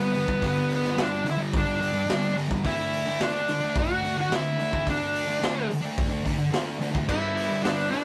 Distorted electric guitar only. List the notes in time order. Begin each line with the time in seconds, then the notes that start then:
Already playing: G2 D3 G3
0.13 G2 D3 G3
0.26 D3 G3
0.41 G2 D3 G3
0.82 D3 G3
0.95 G2 D3 G3
1.24 muted distorted electric guitar stroke
1.37 D3 G3
1.65 D3 G3
1.78 G2 D3 G3
1.92 muted distorted electric guitar stroke
2.06 G2 D3 G3
2.34 G2 D3 G3
2.48 D3 G3
2.64 D3 A3 D4
3.06 A3 D4
3.19 D3 A3 D4
3.49 muted distorted electric guitar stroke
3.61 A3 D4
3.88 A3 D4
4.02 D3 A3 D4
4.17 muted distorted electric guitar stroke
4.30 D3 A3 D4
4.58 D3 A3 D4
4.72 A3 D4
4.86 D3 A3 D4
5.26 A3 D4
5.39 D3 A3 D4
5.70 muted distorted electric guitar stroke
5.81 A3 D4
6.09 A3 D4
6.23 D3 A3 D4
6.38 muted distorted electric guitar stroke
6.50 D3 A3 D4
6.79 D3 A3 D4
6.92 A3 D4
7.06 G2 D3 G3
7.48 D3 G3
7.63 G2 D3 G3
7.93 muted distorted electric guitar stroke